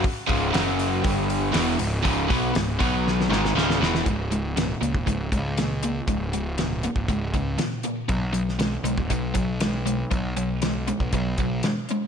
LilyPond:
<<
  \new Staff \with { instrumentName = "Overdriven electric guitar" } { \clef bass \time 4/4 \key cis \minor \tempo 4 = 119 r8 <cis, gis, cis>8 <fis, cis fis>4 <g, d g>4 <e, b, e>8 <cis, gis,>8 | <cis, gis, cis>8 <b, fis b>8 <cis, gis,>8 <b, fis b>4 <gis, dis gis>8 <cis, gis, cis>8 <e, b, e>8 | <cis, gis,>8 <cis, gis,>8 <cis, ais,>8 <cis, ais,>8 <cis, gis,>8 <cis, gis,>8 <cis, ais,>8 <cis, ais,>8 | <cis, gis,>8 <cis, gis,>8 <cis, ais,>8 <cis, ais,>8 <cis, gis,>8 <cis, gis,>8 <cis, ais,>8 <cis, ais,>8 |
<b, fis>8 <b, fis>8 <b, gis>8 <b, gis>8 <b, fis>8 <b, fis>8 <b, gis>8 <b, gis>8 | <b, fis>8 <b, fis>8 <b, gis>8 <b, gis>8 <b, fis>8 <b, fis>8 <b, gis>8 <b, gis>8 | }
  \new Staff \with { instrumentName = "Picked electric bass" } { \clef bass \time 4/4 \key cis \minor r8 cis,,8 fis,,4 g,,4 e,,8 cis,,8 | cis,,8 b,,8 cis,,8 b,,4 gis,,8 cis,,8 e,,8 | cis,,4. cis,16 e,,16 cis,,8 cis,4. | cis,,4.~ cis,,16 cis,,16 cis,,8 cis,8 r4 |
b,,4. b,,16 dis,,16 b,,8 b,,4. | b,,4.~ b,,16 b,,16 b,,8 b,,8 r4 | }
  \new DrumStaff \with { instrumentName = "Drums" } \drummode { \time 4/4 <hho bd>8 <hho bd>8 <hho sn>8 hho8 <hho bd>8 hho8 <hho sn>8 hho8 | <hho bd>8 <hho bd>8 <hho sn>8 <hho bd>8 sn16 sn16 sn16 sn16 sn16 sn16 sn16 sn16 | <hh bd>8 hh8 <hh sn>8 hh16 bd16 <hh bd>8 <hh bd>8 <hh sn>8 hh8 | <hh bd>8 hh8 <hh sn>8 hh16 bd16 <hh bd>8 <hh bd>8 <hh sn>8 hh8 |
<hh bd>8 hh16 sn16 <hh sn>8 hh16 bd16 <hh bd>8 <hh bd>8 <hh sn>8 hh8 | <hh bd>8 hh8 <hh sn>8 hh16 bd16 <hh bd>8 <hh bd>8 <hh sn>8 hh8 | }
>>